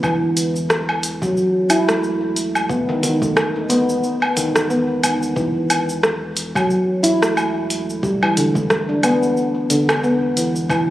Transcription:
0.03 1.33 E1 medium
0.03 0.21 E3 loud
0.03 kick loud
0.03 cabasa soft
0.03 low woodblock medium
0.37 closed hi-hat medium
0.37 cabasa medium
0.56 cabasa soft
0.70 cross-stick medium
0.70 cabasa soft
0.89 low woodblock medium
1.03 closed hi-hat medium
1.03 cabasa medium
1.22 1.36 F#3 medium
1.22 kick loud
1.22 cabasa soft
1.37 cabasa soft
1.70 2.66 E1 medium
1.70 1.88 E4 loud
1.70 closed hi-hat medium
1.70 cabasa medium
1.70 low woodblock medium
1.89 2.03 A3 medium
1.89 cross-stick medium
1.89 cabasa soft
2.03 cabasa soft
2.36 closed hi-hat medium
2.36 cabasa medium
2.55 cabasa soft
2.55 low woodblock medium
2.69 4.00 E1 medium
2.69 2.88 B3 medium
2.69 kick loud
2.69 cabasa soft
2.89 3.02 D#3 loud
3.03 3.20 D#3 medium
3.03 closed hi-hat medium
3.03 cabasa medium
3.22 3.36 A3 medium
3.22 kick loud
3.22 cabasa soft
3.37 cross-stick medium
3.37 cabasa soft
3.37 low woodblock medium
3.56 3.69 D#4 medium
3.70 4.35 B3 loud
3.70 closed hi-hat medium
3.70 cabasa medium
3.89 cabasa soft
4.04 cabasa soft
4.22 low woodblock medium
4.37 5.33 E1 medium
4.37 4.68 D#3 medium
4.37 closed hi-hat medium
4.37 cabasa medium
4.56 cross-stick medium
4.56 cabasa soft
4.70 5.02 B3 medium
4.70 cabasa soft
5.03 5.35 D#3 medium
5.03 closed hi-hat medium
5.03 cabasa medium
5.03 low woodblock medium
5.23 cabasa soft
5.36 6.66 E1 medium
5.36 5.54 E3 medium
5.36 kick loud
5.36 cabasa soft
5.70 closed hi-hat medium
5.70 cabasa medium
5.70 low woodblock medium
5.89 cabasa soft
6.03 cross-stick medium
6.03 cabasa soft
6.37 closed hi-hat medium
6.37 cabasa medium
6.55 6.69 F#3 loud
6.55 kick loud
6.55 cabasa soft
6.55 low woodblock medium
6.70 cabasa soft
7.03 8.00 E1 medium
7.03 7.21 E4 medium
7.03 closed hi-hat medium
7.03 cabasa medium
7.22 7.36 A3 medium
7.22 cross-stick medium
7.22 cabasa soft
7.37 cabasa soft
7.37 low woodblock medium
7.70 closed hi-hat medium
7.70 cabasa medium
7.90 cabasa soft
8.03 9.33 E1 medium
8.03 8.20 G3 medium
8.03 kick loud
8.03 cabasa soft
8.23 8.36 E3 medium
8.23 low woodblock medium
8.37 8.54 D3 medium
8.37 closed hi-hat medium
8.37 cabasa medium
8.55 8.69 A3 medium
8.55 kick medium
8.55 cabasa soft
8.70 cross-stick medium
8.70 cabasa soft
8.89 9.03 D4 medium
9.03 9.69 B3 loud
9.03 closed hi-hat medium
9.03 cabasa medium
9.03 low woodblock medium
9.23 cabasa soft
9.37 cabasa soft
9.70 10.66 E1 loud
9.70 10.02 D3 medium
9.70 closed hi-hat medium
9.70 cabasa medium
9.89 cross-stick medium
9.89 cabasa soft
9.89 low woodblock medium
10.04 10.35 B3 medium
10.04 cabasa soft
10.37 10.69 E3 medium
10.37 closed hi-hat medium
10.37 cabasa medium
10.56 cabasa soft
10.69 10.90 E1 loud
10.69 10.88 E3 loud
10.69 kick loud
10.69 cabasa soft
10.69 low woodblock medium

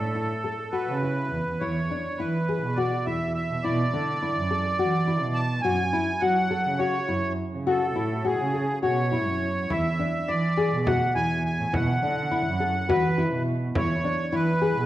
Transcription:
0.00 0.24 A2 medium
0.00 0.98 A4 medium
0.15 0.32 E4 medium
0.44 0.61 A4 medium
0.72 0.90 F#4 medium
0.72 1.63 B4 medium
0.87 1.25 C#3 medium
1.03 1.38 E4 medium
1.31 1.44 E2 medium
1.46 1.59 E2 medium
1.60 1.86 E2 medium
1.60 1.79 E4 medium
1.60 2.20 C#5 medium
1.91 2.08 D4 medium
2.18 2.56 E3 medium
2.18 2.37 E4 medium
2.18 2.78 B4 medium
2.49 2.66 G#4 medium
2.62 2.87 B2 medium
2.76 2.95 F#4 medium
2.76 3.06 D5 medium
3.05 3.31 E2 medium
3.05 3.42 E4 medium
3.05 3.33 E5 medium
3.34 3.64 E5 medium
3.50 3.62 B2 medium
3.63 3.88 B2 medium
3.63 3.82 E4 medium
3.63 5.41 D5 medium
3.93 4.29 D3 medium
3.93 4.11 D4 medium
4.23 4.40 E4 medium
4.36 4.60 F#2 medium
4.51 4.68 A4 medium
4.79 5.24 E3 medium
4.79 4.96 F#4 medium
5.07 5.42 E4 medium
5.22 5.58 B2 medium
5.34 5.62 A5 medium
5.62 5.89 F#2 medium
5.62 5.82 F#4 medium
5.62 6.22 G#5 medium
5.93 6.10 E4 medium
6.20 6.58 F#3 medium
6.20 6.39 F#4 medium
6.20 6.80 F#5 medium
6.50 6.68 A4 medium
6.65 6.89 C#3 medium
6.78 6.97 F#4 medium
6.78 7.33 C#5 medium
7.08 7.33 F#2 medium
7.08 7.43 E4 medium
7.51 7.88 C#3 medium
7.66 7.84 F#4 medium
7.66 8.26 A4 medium
7.95 8.32 A2 medium
7.95 8.13 E4 medium
8.24 8.42 F#4 medium
8.24 8.79 G#4 medium
8.38 8.63 C#3 medium
8.54 8.71 A4 medium
8.82 9.28 B2 medium
8.82 9.00 F#4 medium
8.82 9.72 C#5 medium
9.12 9.47 E4 medium
9.26 9.63 F#2 medium
9.70 9.94 E2 medium
9.70 9.88 E4 medium
9.70 10.31 E5 medium
9.70 frame drum soft
9.99 10.17 D4 medium
10.28 10.65 E3 medium
10.28 10.46 E4 medium
10.28 10.88 D5 medium
10.28 11.37 B6 medium
10.58 10.75 G#4 medium
10.72 10.97 B2 medium
10.87 11.04 F#4 medium
10.87 11.13 F#5 medium
10.87 frame drum medium
11.15 11.40 E2 medium
11.15 11.51 E4 medium
11.15 11.44 G#5 medium
11.45 11.74 G#5 medium
11.59 11.71 A2 medium
11.73 11.98 B2 medium
11.73 11.91 E4 medium
11.73 12.92 F#5 medium
11.73 frame drum medium
12.03 12.39 D3 medium
12.03 12.20 D4 medium
12.32 12.49 E4 medium
12.46 12.70 F#2 medium
12.60 12.78 A4 medium
12.89 13.34 E3 medium
12.89 13.06 F#4 medium
12.89 13.43 B4 medium
12.89 frame drum medium
13.18 13.53 E4 medium
13.32 13.69 B2 medium
13.75 14.00 E2 medium
13.75 13.93 E4 medium
13.75 14.35 C#5 medium
13.75 frame drum medium
14.05 14.22 D4 medium
14.33 14.69 E3 medium
14.33 14.50 E4 medium
14.33 14.86 B4 medium
14.62 14.79 G#4 medium
14.76 14.86 B2 medium

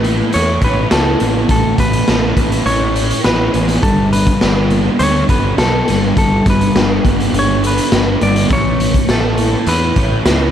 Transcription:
0.00 0.21 A1 medium
0.00 1.24 A3 medium
0.00 0.91 E4 medium
0.00 0.34 A4 medium
0.04 closed hi-hat medium
0.33 0.57 E2 medium
0.33 2.08 A4 medium
0.33 0.64 C#5 medium
0.33 closed hi-hat medium
0.61 0.84 A1 medium
0.61 0.92 B4 medium
0.61 2.09 C#5 medium
0.61 kick medium
0.61 closed hi-hat medium
0.91 1.14 C#2 medium
0.91 2.36 E4 medium
0.91 1.33 A4 medium
0.91 snare loud
0.91 closed hi-hat medium
1.20 1.44 A1 medium
1.20 2.70 B3 medium
1.20 closed hi-hat medium
1.49 1.72 A1 medium
1.49 3.57 A3 medium
1.49 1.79 A4 medium
1.49 kick loud
1.49 closed hi-hat medium
1.78 2.01 A1 medium
1.78 2.65 B4 loud
1.78 kick medium
1.78 closed hi-hat medium
1.93 closed hi-hat medium
2.08 2.31 A1 medium
2.08 2.66 A4 medium
2.08 snare medium
2.08 closed hi-hat medium
2.36 2.60 A1 medium
2.36 3.23 E4 medium
2.36 kick medium
2.36 closed hi-hat medium
2.52 closed hi-hat medium
2.66 3.12 A1 medium
2.66 3.87 A4 medium
2.66 3.24 C#5 loud
2.66 closed hi-hat medium
2.95 3.83 C#5 medium
2.95 closed hi-hat medium
3.10 closed hi-hat medium
3.24 3.48 A1 medium
3.24 3.83 E4 medium
3.24 3.66 B4 medium
3.24 snare loud
3.24 closed hi-hat medium
3.54 3.77 A1 medium
3.54 4.71 B3 medium
3.54 closed hi-hat medium
3.69 closed hi-hat medium
3.83 4.28 G1 medium
3.83 5.30 G3 medium
3.83 4.12 A4 medium
3.83 kick loud
3.83 closed hi-hat medium
4.13 4.67 B4 medium
4.13 closed hi-hat medium
4.26 kick medium
4.26 closed hi-hat medium
4.41 4.88 G1 medium
4.41 5.00 D4 medium
4.41 snare loud
4.41 closed hi-hat medium
4.70 5.60 B3 medium
4.70 closed hi-hat medium
4.99 5.23 D2 medium
4.99 6.47 D4 medium
4.99 5.29 C#5 loud
4.99 closed hi-hat medium
5.29 5.52 G1 medium
5.29 7.08 A4 medium
5.29 5.57 B4 medium
5.29 kick medium
5.29 closed hi-hat medium
5.58 5.81 B1 medium
5.58 7.05 B3 medium
5.58 5.99 A4 medium
5.58 snare loud
5.58 closed hi-hat medium
5.88 6.11 G1 medium
5.88 6.18 G3 medium
5.88 snare soft
5.88 closed hi-hat medium
6.16 6.40 G1 medium
6.16 7.64 G3 medium
6.16 6.48 A4 medium
6.16 kick loud
6.16 closed hi-hat medium
6.46 6.69 G1 medium
6.46 kick loud
6.46 closed hi-hat medium
6.50 7.03 B4 medium
6.61 closed hi-hat medium
6.75 6.98 G1 medium
6.75 7.34 D4 medium
6.75 snare loud
6.75 closed hi-hat medium
7.05 7.28 G1 medium
7.05 7.93 B3 medium
7.05 kick medium
7.05 closed hi-hat medium
7.20 closed hi-hat medium
7.33 7.79 G1 medium
7.33 8.52 D4 medium
7.33 closed hi-hat medium
7.39 7.66 C#5 medium
7.64 9.10 A4 medium
7.64 8.22 B4 medium
7.64 closed hi-hat medium
7.78 closed hi-hat medium
7.92 8.15 G1 medium
7.92 8.56 B3 medium
7.92 snare loud
7.92 closed hi-hat medium
8.21 8.45 G1 medium
8.21 8.52 G3 medium
8.21 8.52 D5 medium
8.21 closed hi-hat medium
8.36 closed hi-hat medium
8.50 8.96 A1 medium
8.50 9.98 A3 medium
8.50 9.12 C#5 medium
8.50 kick loud
8.50 closed hi-hat medium
8.80 closed hi-hat medium
8.94 kick medium
8.94 closed hi-hat medium
9.09 9.55 A1 medium
9.09 9.70 A4 medium
9.09 9.68 A4 medium
9.09 snare medium
9.09 closed hi-hat medium
9.38 10.26 E4 medium
9.38 closed hi-hat medium
9.67 9.90 E2 medium
9.67 10.51 A4 medium
9.67 10.51 B4 medium
9.67 closed hi-hat medium
9.96 10.20 A1 medium
9.96 10.51 C#5 medium
9.96 kick medium
9.96 closed hi-hat medium
10.25 10.49 C#2 medium
10.25 10.51 E4 medium
10.25 snare loud
10.25 closed hi-hat medium

